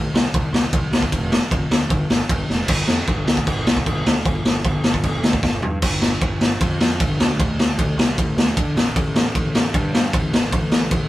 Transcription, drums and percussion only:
0.15 snare
0.34 kick, ride
0.54 snare
0.73 kick, ride
0.93 snare
1.02 kick
1.12 kick, ride
1.32 snare
1.51 kick, ride
1.71 snare
1.90 kick, ride
2.10 snare
2.29 kick, ride
2.50 snare
2.68 kick, crash
2.87 snare
3.07 kick, crash
3.28 snare
3.37 kick
3.47 kick, crash
3.67 snare
3.77 kick
3.86 kick, crash
4.06 snare
4.25 kick, crash
4.45 snare
4.64 kick, crash
4.84 snare
4.94 kick
5.03 kick, crash
5.24 snare
5.33 kick
5.43 kick, snare
5.62 floor tom
5.82 kick, crash
6.02 snare
6.21 kick, ride
6.41 snare
6.60 kick, ride
6.81 snare
7.00 kick, ride
7.20 snare
7.40 kick, ride
7.59 snare
7.79 kick, ride
7.99 snare
8.18 kick, ride
8.38 snare
8.57 kick, ride
8.77 snare
8.96 kick, ride
9.16 snare
9.35 kick, ride
9.55 snare
9.74 kick, ride
9.95 snare
10.13 kick, ride
10.34 snare
10.52 kick, ride
10.72 snare
10.91 kick, ride

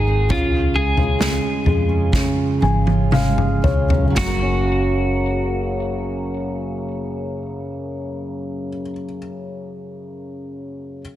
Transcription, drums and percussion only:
0.30 kick, floor tom
0.97 floor tom
1.21 snare
1.66 floor tom
2.13 kick, snare
2.62 high tom
2.87 high tom
3.12 mid tom
3.38 mid tom
3.64 floor tom
3.90 floor tom
4.17 kick, snare

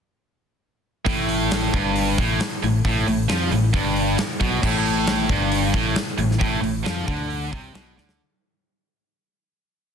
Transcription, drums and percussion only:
1.06 kick, open hi-hat
1.29 open hi-hat
1.51 snare, open hi-hat
1.74 kick, open hi-hat
1.96 open hi-hat
2.18 kick
2.40 snare, open hi-hat
2.64 open hi-hat
2.85 kick, open hi-hat
3.08 open hi-hat
3.29 snare, open hi-hat
3.51 open hi-hat
3.74 kick, open hi-hat
3.96 open hi-hat
4.18 snare, open hi-hat
4.41 kick, open hi-hat
4.63 kick, crash
4.86 open hi-hat
5.07 snare, open hi-hat
5.29 kick, open hi-hat
5.52 open hi-hat
5.74 kick, open hi-hat
5.96 snare, open hi-hat
6.18 open hi-hat
6.31 snare
6.41 kick, open hi-hat
6.64 open hi-hat
6.86 snare, open hi-hat
7.08 kick, open hi-hat
7.30 open hi-hat
7.53 kick
7.75 snare, open hi-hat
7.98 snare
8.09 snare

